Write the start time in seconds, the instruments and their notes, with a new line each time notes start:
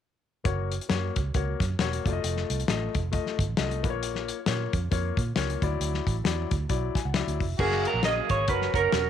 0.44 fingered electric bass F#1, grand piano A#3 F#4 C#5, kick, closed hi-hat
0.72 closed hi-hat
0.81 closed hi-hat
0.89 fingered electric bass F#2, grand piano A#3 F#4 C#5, snare, closed hi-hat
1.16 fingered electric bass C#2, kick, closed hi-hat
1.34 fingered electric bass C#2, grand piano A#3 F#4 C#5, kick, closed hi-hat
1.60 fingered electric bass F#2, kick, snare, closed hi-hat
1.79 fingered electric bass E1, grand piano A#3 F#4 C#5, snare, closed hi-hat
1.93 closed hi-hat
2.06 fingered electric bass F1, grand piano A3 F4 D5, kick, closed hi-hat
2.13 grand piano D#5
2.24 fingered electric bass F1, closed hi-hat
2.37 snare
2.50 fingered electric bass C2, closed hi-hat
2.60 closed hi-hat
2.68 fingered electric bass A1, grand piano A3 F4 D#5, snare, closed hi-hat
2.95 fingered electric bass F1, kick, closed hi-hat
3.12 grand piano A3 F4 D#5, kick, closed hi-hat
3.26 snare
3.39 fingered electric bass G1, kick, closed hi-hat
3.49 fingered electric bass A1
3.57 fingered electric bass C2, grand piano A3 F4 D#5, snare, closed hi-hat
3.71 closed hi-hat
3.83 fingered electric bass A#1, grand piano A#3 F4 B4, kick, closed hi-hat
3.90 grand piano C#5
4.03 closed hi-hat
4.15 snare
4.28 closed hi-hat
4.46 fingered electric bass A#2, grand piano A#3 F4 C#5, snare, closed hi-hat
4.73 fingered electric bass F2, kick, closed hi-hat
4.91 fingered electric bass F2, grand piano A#3 F4 C#5, kick, closed hi-hat
5.17 fingered electric bass A#2, kick, closed hi-hat
5.35 fingered electric bass C#2, grand piano A#3 F4 C#5, snare, closed hi-hat
5.50 closed hi-hat
5.62 fingered electric bass D2, grand piano F#3 E4 D5, kick, closed hi-hat
5.80 fingered electric bass D2, closed hi-hat
5.94 snare
6.07 fingered electric bass A1, kick, closed hi-hat
6.24 fingered electric bass E2, grand piano F#3 E4 D5, snare, closed hi-hat
6.51 fingered electric bass D2, kick, closed hi-hat
6.69 fingered electric bass B1, grand piano F#3 E4 D5, kick, closed hi-hat
6.95 grand piano G#5, muted fingered electric bass stroke, kick, snare, closed hi-hat
7.05 fingered electric bass C#2, grand piano F#5
7.13 grand piano F#3 E4 D5 E5, snare, closed hi-hat
7.27 fingered electric bass D2, closed hi-hat
7.40 fingered electric bass F1, kick, open hi-hat
7.58 fingered electric bass F#1, horn section C#3 A#3 F#4, grand piano F#3 C#4 A#4, clean electric guitar G#4, kick, crash
7.72 snare
7.85 clean electric guitar A#4, closed hi-hat
7.94 fingered electric bass A#1
8.03 horn section C#3 A#3 G#4, grand piano F#3 C#4 A#4, clean electric guitar D#5, snare, closed hi-hat
8.29 fingered electric bass G#1, clean electric guitar C#5, kick, closed hi-hat
8.48 fingered electric bass F#1, grand piano F#3 C#4 A#4, horn section F#3 C#4 A#4, clean electric guitar B4, kick, closed hi-hat
8.62 snare
8.74 fingered electric bass F#1, horn section F#3 C#4 A#4, clean electric guitar A#4, kick, closed hi-hat
8.92 fingered electric bass E1, grand piano F#3 C#4 A#4, snare, closed hi-hat